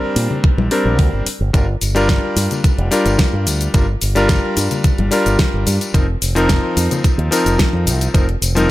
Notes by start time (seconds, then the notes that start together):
Already playing: G3 C4 D4 A#4
0.16 A#2, open hi-hat
0.31 low conga
0.44 kick
0.58 A#1, high conga
0.71 G3 C4 D4 A#4, open hi-hat
0.85 A#1
0.99 D2, kick, open hi-hat
1.13 G1
1.26 muted fingered electric bass stroke, open hi-hat
1.41 G1
1.53 G1 G3 D4 F4 A#4, kick, closed hi-hat, tambourine, cabasa
1.81 G1, open hi-hat, tambourine, cabasa
1.95 G3 D4 F4 A#4, closed hi-hat, tambourine, cabasa
2.09 kick, snare, closed hi-hat, tambourine, cabasa
2.36 G2, open hi-hat, tambourine, cabasa
2.51 closed hi-hat, tambourine, low conga, cabasa
2.64 muted fingered electric bass stroke, kick, closed hi-hat, tambourine, cabasa
2.78 F1, closed hi-hat
2.91 G3 D4 F4 A#4, open hi-hat, tambourine, cabasa
3.06 G1, closed hi-hat, tambourine, cabasa
3.19 kick, snare, closed hi-hat, tambourine, cabasa
3.33 G2
3.47 D2, open hi-hat, tambourine, cabasa
3.61 closed hi-hat, tambourine, cabasa
3.74 G1 G3 D4 F4 A#4, kick, closed hi-hat, tambourine, cabasa
4.02 G1, open hi-hat, tambourine, cabasa
4.15 G3 D4 F4 A#4, closed hi-hat, tambourine, cabasa
4.29 kick, snare, closed hi-hat, tambourine, cabasa
4.57 G2, open hi-hat, tambourine, cabasa
4.71 closed hi-hat, tambourine, low conga, cabasa
4.84 kick, closed hi-hat, tambourine, cabasa
4.98 G1, closed hi-hat, high conga
5.11 G3 D4 F4 A#4, open hi-hat, tambourine, cabasa
5.26 G1, closed hi-hat, tambourine, cabasa
5.39 kick, snare, open hi-hat, tambourine, cabasa
5.54 G1
5.67 G2, open hi-hat, tambourine, cabasa
5.81 closed hi-hat, tambourine, cabasa
5.94 F1 F3 C4 D#4 A#4, kick, closed hi-hat, tambourine, cabasa
6.22 F1, open hi-hat, tambourine, cabasa
6.35 F3 C4 D#4 A#4, closed hi-hat, tambourine, cabasa
6.49 kick, snare, closed hi-hat, tambourine, cabasa
6.77 F2, open hi-hat, tambourine, cabasa
6.91 closed hi-hat, tambourine, low conga, cabasa
7.04 muted fingered electric bass stroke, kick, closed hi-hat, tambourine, cabasa
7.18 D#2, closed hi-hat
7.31 F3 C4 D#4 A#4, open hi-hat, tambourine, cabasa
7.46 F1, closed hi-hat, tambourine, cabasa
7.59 kick, snare, closed hi-hat, tambourine, cabasa
7.73 F2
7.86 C2, open hi-hat, tambourine, cabasa
8.01 closed hi-hat, tambourine, cabasa
8.14 F1 F3 C4 D#4 A#4, kick, closed hi-hat, tambourine, cabasa
8.29 closed hi-hat
8.42 F1, open hi-hat, tambourine, cabasa
8.55 F3 C4 D#4 A#4, closed hi-hat, tambourine, high conga, cabasa